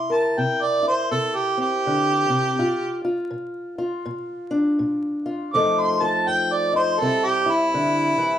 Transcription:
Already playing: C3 E4 C6
0.10 A#4 A5
0.38 C3 G5
0.62 D5
0.83 E4
0.88 C5
1.11 C3 A4
1.36 G4
1.57 C4 G4
1.86 D3
2.29 C3
2.59 A#2 F4
3.05 F4
3.31 A#2
3.78 F4
4.06 A#2
4.51 D4
4.79 A#2
5.26 F4
5.54 F2 F3 A3 D#4 A4 D6
5.80 C6
6.02 A4 A5
6.28 F2 G5
6.53 D5
6.73 D#4 C5
7.00 C3 G3 C4 E4 A4
7.25 G4
7.46 E4
7.50 E4
7.74 D3
8.18 E3

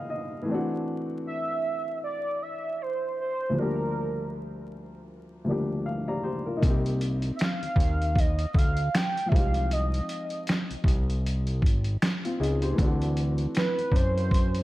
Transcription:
Already playing: D#5 F5 G5 G#5
0.10 D#5
0.42 E3 A3
0.48 C4 D4
0.54 F#4
1.27 E5
2.04 D5
2.42 E5
2.82 C5
3.20 C5
3.49 D2 F3
3.54 G3 A#3 A#4
3.59 D4 G4
5.44 D2 F3 G3 A#3
5.49 D4 G4
5.86 F5
6.08 G4 D5 A#5
6.23 G4 C5
6.46 F4 A#4
6.57 A#3 D#4
6.63 C2 C4, kick, closed hi-hat
6.69 G4
6.86 closed hi-hat
7.01 closed hi-hat
7.22 closed hi-hat
7.36 E5, closed hi-hat
7.41 F5, finger snap, snare
7.62 D#2, closed hi-hat
7.76 D#2, kick
7.80 closed hi-hat
8.02 closed hi-hat
8.16 D#5, kick, closed hi-hat
8.39 closed hi-hat
8.54 D2 F5, kick
8.59 closed hi-hat
8.77 closed hi-hat
8.95 G5, finger snap, snare, closed hi-hat
9.17 closed hi-hat
9.26 F3 G#3 E5
9.32 C2 C4 D#4 F5, kick
9.36 G4, closed hi-hat
9.54 closed hi-hat
9.71 D#5, closed hi-hat
9.94 closed hi-hat
10.09 closed hi-hat
10.30 closed hi-hat
10.47 finger snap, snare, closed hi-hat
10.70 C2, closed hi-hat
10.84 C2, kick
10.88 closed hi-hat
11.10 closed hi-hat
11.26 closed hi-hat
11.47 closed hi-hat
11.62 G#1, kick
11.66 closed hi-hat
11.84 closed hi-hat
12.02 finger snap, snare, closed hi-hat
12.25 C4 F4, closed hi-hat
12.40 C#2 D#4 G#4, closed hi-hat
12.62 G4 C5, closed hi-hat
12.72 E3 A3
12.78 D2 C4 D4, kick, closed hi-hat
12.84 F#4
13.02 closed hi-hat
13.17 closed hi-hat
13.38 closed hi-hat
13.55 B4, finger snap, snare, closed hi-hat
13.78 F#2, closed hi-hat
13.92 F#2 C5, kick
13.96 closed hi-hat
14.18 closed hi-hat
14.31 kick, closed hi-hat
14.55 closed hi-hat

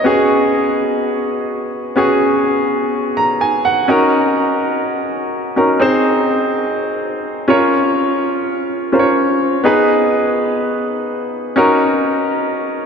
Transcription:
Already playing: D#5
0.04 B3 C#4 F#4 G#4
1.96 B3 C#4 F#4 G#4
3.17 A#5
3.41 G#5
3.65 F#5
3.88 C#4 D#4 F#4 A#4
5.56 C#4 D#4 F#4 A#4
5.80 C4 D#4 G#4 C5
7.48 C#4 F4 A#4 C#5
8.92 C#4 F4 A#4 C5
8.99 C#5
9.64 B3 D#4 G#4 B4
11.56 C#4 D#4 F#4 A#4

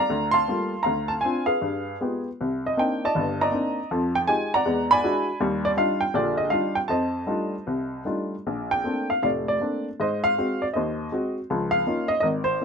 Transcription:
Already playing: D5 F5 A#5
0.10 D2
0.31 F5 A5 C6
0.48 G3 A3 A#3 F4
0.83 D2 F5 A#5
1.08 A5
1.21 C4 D4 G#5
1.25 F4
1.46 G#4 B4 F5
1.62 G2
2.01 G#3 B3 F4 G4
2.41 C2
2.66 D#5
2.77 A#3 C4 D4 D#4 G5
3.05 D5 D#5 A5
3.15 G1 G2
3.41 D5 D#5 A#5
3.51 A#3 C4 D4 D#4
3.91 F2 F3
4.15 G5
4.27 G#3 D#4 F4 G4 G#5
4.54 D5 F#5 A#5
4.66 E2 G#3
4.91 D5 G#5 B5
5.04 G#3 D4 E4 F#4
5.40 D#2 G3
5.65 D5
5.77 G3 D4 D#4 F4 F5
6.01 G5
6.14 A#1 D3 F4 G4 D5
6.37 D#5
6.50 G3 D4 D#4 F4 F5
6.75 G5
6.88 F2 C5 D#5 A5
7.27 G3 A3 D4 D#4 F4
7.67 C2
8.05 G3 A3 D4 D#4 F4
8.47 A#1
8.71 G5
8.84 A3 A#3 C4 D4
9.10 F5
9.23 F1 A2 D5 F5
9.48 D5
9.61 A3 A#3 C4 D4
10.00 G#2 C5 D#5
10.24 F5
10.38 G#3 C4 F#4
10.62 D5
10.73 D#2 C5 D#5
11.12 G#3 C4 F#4
11.50 C#2 F3
11.71 F5
11.87 A#3 C#4 D#4 F4
12.08 D#5
12.20 G#1 A#4 D#5
12.44 C5
12.61 A#3

